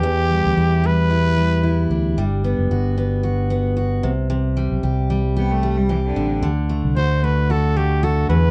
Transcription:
X:1
M:4/4
L:1/16
Q:"Swing 16ths" 1/4=113
K:Dmix
V:1 name="Trumpet"
G6 B8 z2 | z16 | z16 | z4 c2 B2 A2 G2 A2 B2 |]
V:2 name="Steel-string acoustic guitar"
E,,2 G,2 E2 G,2 E2 G,2 E2 D2 | G,2 B,2 F2 B,2 F2 B,2 F2 C,2 | C,2 G,2 G2 G,2 G2 G,2 G2 D2 | D,2 A,2 F2 A,2 F2 A,2 F2 E,,2 |]
V:3 name="Cello" clef=bass
z16 | z16 | z8 B, A,2 G, E, D,3 | z16 |]
V:4 name="Fingered electric bass" clef=bass
E,,3 D,, E,,8- E,,2 D,,2 | G,,,3 F,,, G,,,8- G,,,2 C,,2- | C,,3 B,,, C,,8- C,,2 A,,,2 | D,,3 C,, D,,8- D,,2 E,,2 |]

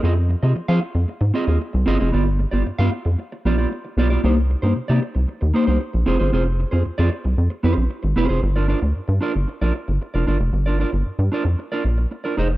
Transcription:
X:1
M:4/4
L:1/16
Q:1/4=114
K:Gphr
V:1 name="Clean electric guitar"
[CFAe] z2 [CFAe] z [CFAf] z4 [CFAe] [CFAe] z2 [CFAe] [CFAe] | [=B,FGd] z2 [B,FGd] z [B,FGf] z4 [B,FGd] [B,FGd] z2 [B,FGd] [B,FGd] | [B,EGc] z2 [B,EGc] z [B,EGd] z4 [B,EGc] [B,EGc] z2 [CFAc] [CFAc] | [CFAc] z2 [CFAc] z [CFAd] z4 [CFAc]2 z2 [CFAc] [CFAc] |
z [DFBd] [DFBd] z3 [DFBd] z2 [DFBd] z3 [DFBd] [DFBd] z | z [DFBd] [DFBd] z3 [DFBd] z2 [DFBd] z3 [DFBd] [EAce] z |]
V:2 name="Analog synth bass" clef=bass
F,,3 C, F, F, z F,, z A,, z E,, z C,, G,,, F,,, | G,,,3 G,,, G,, G,, z F,, z2 B,,,2 z2 =B,,,2 | C,,3 G,, C, C, z C,, z E,, z C,, z B,,, F,,, G,,, | F,,,3 F,, F,, F,, z C,, F,, z F,, B,,, z A,,, F,,, F,,, |
G,,,3 D,, G,, G,, z G,,, z B,,, z G,,, z F,,, G,,, F,,, | G,,,3 G,,, G,, G,, z F,, z2 B,,,2 z2 F,,,2 |]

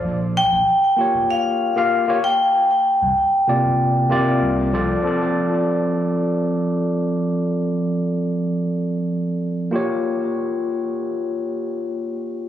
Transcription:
X:1
M:4/4
L:1/16
Q:1/4=96
K:F
V:1 name="Vibraphone"
z2 g6 f6 g2- | g12 z4 | z16 | z16 |
z16 |]
V:2 name="Tine electric piano"
z6 [B,FG_d]4- [B,FGd] [B,FGf]2 [B,FGd] z2 | z6 [C,B,Fd]4 [C,B,Fd]4 [F,FAd]2 | [F,CAd]16- | [F,CAd]12- [F,CAd]2 [B,FG_d]2- |
[B,FG_d]16 |]
V:3 name="Sub bass" clef=bass
B,,,2 z B,,, z3 F,,, z8 | z3 C,, z3 G,,, z2 G,,, z C,,3 z | z16 | z16 |
z16 |]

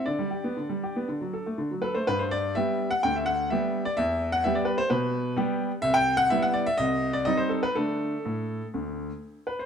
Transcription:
X:1
M:4/4
L:1/16
Q:1/4=125
K:G
V:1 name="Grand piano"
d12 z2 B c | B c d2 e3 f g e f2 e3 d | e3 f e d B c B4 z4 | e g2 f e f d e _e3 d e c A B |
A12 z2 B c |]
V:2 name="Grand piano" clef=bass
D, G, G B, D, G, G B, D, F, A A, D, F, A A, | G,,4 [G,B,G]4 D,,4 [G,B,G]4 | E,,4 [G,B,G]4 B,,4 [G,B,G]4 | C,,4 [G,B,E]4 C,,4 [G,C_E]4 |
[D,A,D]4 A,,4 D,,4 z4 |]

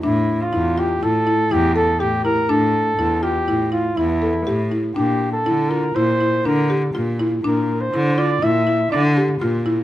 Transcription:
X:1
M:5/4
L:1/16
Q:1/4=122
K:Aphr
V:1 name="Flugelhorn"
E3 F3 G2 A4 G2 A2 G2 B2 | A6 G4 F2 E6 z2 | G3 A3 B2 c4 B2 z6 | B3 c3 d2 e4 d2 z6 |]
V:2 name="Marimba"
D4 E2 F2 E2 E2 E2 A2 G2 E2 | D4 E2 F2 E2 E2 E2 A2 G2 E2 | D4 E2 F2 E2 E2 D2 G2 F2 E2 | D4 E2 F2 E2 E2 D2 G2 F2 E2 |]
V:3 name="Cello" clef=bass
A,,4 E,,4 A,,4 E,,4 A,,4 | A,,4 E,,4 A,,4 E,,4 A,,4 | B,,4 D,4 B,,4 D,4 B,,4 | B,,4 D,4 B,,4 D,4 B,,4 |]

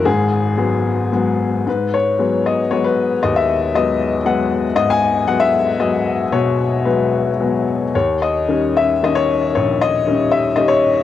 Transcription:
X:1
M:3/4
L:1/16
Q:1/4=114
K:G#m
V:1 name="Upright piano"
G8 z4 | B2 c4 d2 c B3 | d e3 d4 f3 z | d g3 f e3 d4 |
c4 B6 z2 | c2 d4 e2 d c3 | c2 d4 e2 d c3 |]
V:2 name="Upright piano" clef=bass
[G,,,G,,]4 [F,G,B,]4 [F,G,B,]4 | G,,4 [F,G,B,]4 [F,G,B,]4 | D,,4 [F,G,B,]4 [F,G,B,]4 | G,,4 [F,G,B,]4 [F,G,B,]4 |
B,,4 [F,G,B,]4 [F,G,B,]4 | D,,4 [D,=G,C]4 [D,G,C]4 | A,,,4 [D,=G,C]4 [D,G,C]4 |]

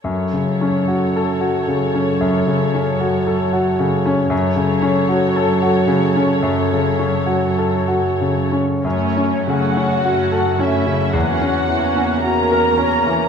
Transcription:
X:1
M:4/4
L:1/16
Q:1/4=55
K:F#m
V:1 name="Violin section"
z16 | z16 | c2 f4 e2 f4 ^a4 |]
V:2 name="Violin section"
[Ac]16 | [Ac]16 | C2 F4 E2 F4 ^A4 |]
V:3 name="Grand piano"
F,, C, C F A F C, C F,, C, C F A F C, C | F,, C, C F A F C, C F,, C, C F A F C, C | F,, C C, C F A C C, E,, C E, C F ^A C E, |]
V:4 name="Viola section"
z16 | z16 | [A,C]2 [A,C]2 [A,C]2 [A,C]2 [^A,C]2 [A,C]2 [A,C]2 [A,C]2 |]
V:5 name="Cello section" clef=bass
F,,16 | F,,16 | F,,4 F,,4 E,,4 E,,4 |]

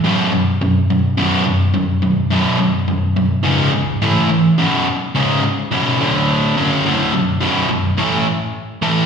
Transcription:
X:1
M:4/4
L:1/8
Q:1/4=106
K:Bm
V:1 name="Overdriven electric guitar" clef=bass
[B,,,F,,B,,] [B,,,F,,] [B,,,F,,] [B,,,F,,] [B,,,F,,B,,] [B,,,F,,] [B,,,F,,] [B,,,F,,] | [B,,,F,,B,,] [B,,,F,,] [B,,,F,,] [B,,,F,,] [C,,^G,,C,] [C,,G,,] [A,,E,A,] [A,,E,] | [B,,,F,,B,,] z [C,,^G,,C,] z [B,,,F,,B,,] [D,,A,,D,]2 [F,,C,F,] | [D,,A,,D,] [B,,,F,,] [B,,,F,,B,,] [B,,,F,,] [A,,E,A,] z2 [A,,E,A,] |]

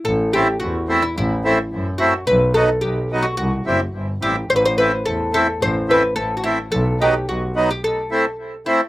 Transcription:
X:1
M:2/4
L:1/16
Q:1/4=108
K:none
V:1 name="Oud"
A2 G2 ^F3 E | E6 ^F2 | B2 A2 G3 ^F | ^F6 G2 |
c/2 B/2 c B2 A2 A2 | c2 B2 A3/2 ^F/2 E2 | A2 G2 ^F3 G | A4 z2 E2 |]
V:2 name="Accordion"
z2 [A,CE] z3 [A,CE] z | z2 [A,CE] z3 [A,CE] z | z2 [^F,B,^D] z3 [F,B,D] z | z2 [G,CE] z3 [G,CE] z |
z2 [A,CE] z3 [A,CE] z | z2 [A,CE] z3 [A,CE] z | z2 [^F,B,^D] z3 [F,B,D] z | z2 [A,CE] z3 [A,CE] z |]
V:3 name="Double bass" clef=bass
A,,,4 E,,4 | A,,,4 ^F,,4 | B,,,4 B,,,4 | C,,2 ^F,,,2 G,,,2 A,,,2 |
A,,,4 E,,4 | A,,,4 A,,,4 | B,,,4 B,,,4 | z8 |]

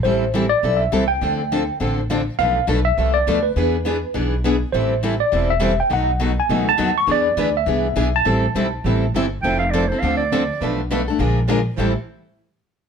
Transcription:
X:1
M:4/4
L:1/8
Q:"Swing" 1/4=205
K:Am
V:1 name="Tine electric piano"
c2 z d2 e2 g- | g4- g z3 | f2 z e2 d2 B- | B4- B z3 |
c2 z d2 e2 g | ^f2 z ^g2 a2 ^c' | d3 e4 a- | a6 z2 |
z8 | z8 | z8 |]
V:2 name="Clarinet"
z8 | z8 | z8 | z8 |
z8 | z8 | z8 | z8 |
g f d c f d3- | d z6 z | c z6 z |]
V:3 name="Steel-string acoustic guitar"
[E,G,CEA] z [E,G,CEA] z [E,G,CEA] z [E,G,CEA] z | [D,F,CDA] z [D,F,CDA] z [D,F,CDA] z [D,F,CDA] z | [B,,F,A,DA] z [B,,F,A,DA] z [B,,F,A,DA] z [B,,F,A,DA] z | [E,B,D^G] z [E,B,DG] z [E,B,DG] z [E,B,DG] z |
[E,G,CEA] z [E,G,CEA] z [E,G,CEA] z [E,G,CEA] z | [B,,^F,A,^D^F] z [B,,F,A,DF] z [B,,F,A,DF] z [B,,F,A,DF] z | [E,B,D^G] z [E,B,DG] z [E,B,DG] z [E,B,DG] z | [E,G,CEA] z [E,G,CEA] z [E,G,CEA] z [E,G,CEA] z |
[F,CEA] z [F,CEA] [CEA] [D,F,CDA] z [D,F,CDA] z | [B,,F,A,DA] z [B,,F,A,DA] [A,DA] [F,_A,DF_B] z [F,A,DFB] z | [A,,E,G,CEA] z6 z |]
V:4 name="Steel-string acoustic guitar"
[E,G,CEA] z [E,G,CEA] z [E,G,CEA] z [E,G,CEA] z | [D,F,CDA] z [D,F,CDA] z [D,F,CDA] z [D,F,CDA] z | [B,,F,A,DAB] z [B,,F,A,DAB] z [B,,F,A,DAB] z [B,,F,A,DAB] z | [E,B,D^GB] z [E,B,DGB] z [E,B,DGB] z [E,B,DGB] z |
[E,G,CEA] z [E,G,CEA] z [E,G,CEA] z [E,G,CEA] z | [B,,^D,^F,B,^DA] z [B,,D,F,B,DA] z [B,,D,F,B,DA] z [B,,D,F,B,DA] z | [E,B,D^GB] z [E,B,DGB] z [E,B,DGB] z [E,B,DGB] z | [E,G,CEA] z [E,G,CEA] z [E,G,CEA] z [E,G,CEA] z |
[F,CEA] z [F,CEA] z [D,F,CDA] z [D,F,CDA] z | [B,,F,A,DAB] z [B,,F,A,DAB] z [D,F,_B,D_A] z [D,F,B,DA] z | [A,,E,G,CEA] z6 z |]
V:5 name="Upright bass" clef=bass
A,,,4 B,,,2 C,,2 | D,,4 A,,,4 | B,,,2 B,,,2 C,,2 D,,2 | E,,4 B,,,4 |
A,,,4 E,,,4 | B,,,4 ^C,,2 ^D,,2 | E,,2 D,,2 C,,2 B,,,2 | A,,,2 B,,,2 A,,,2 G,,,2 |
F,,,4 D,,4 | B,,,4 _B,,,4 | A,,, z6 z |]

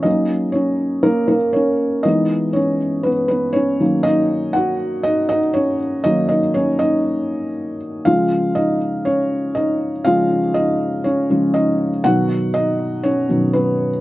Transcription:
X:1
M:4/4
L:1/16
Q:1/4=120
K:C#dor
V:1 name="Felt piano"
[Dd]4 [Cc]4 [A,A]2 [A,A]2 [Cc]4 | [Dd]4 [Cc]4 [B,B]2 [B,B]2 [Cc]4 | [Dd]4 [Ff]4 [Dd]2 [Dd]2 [Cc]4 | [Dd]2 [Dd]2 [Cc]2 [Dd]8 z2 |
[^E^e]4 [Dd]4 [Cc]4 [Dd]3 z | [^E^e]4 [Dd]4 [Cc]4 [Dd]3 z | [Ff]4 [Dd]4 [Cc]4 [B,B]3 z |]
V:2 name="Felt piano" clef=bass
[F,A,C]16 | [E,G,B,]6 z8 [D,F,A,]2- | [D,F,A,]12- [D,F,A,]2 z2 | [D,F,A,]2 z12 z2 |
[C,^E,G,]6 z8 z2 | [C,^E,G,]2 z8 [C,E,G,]2 z4 | [B,,D,F,]8- [B,,D,F,]2 [B,,D,F,]2 z4 |]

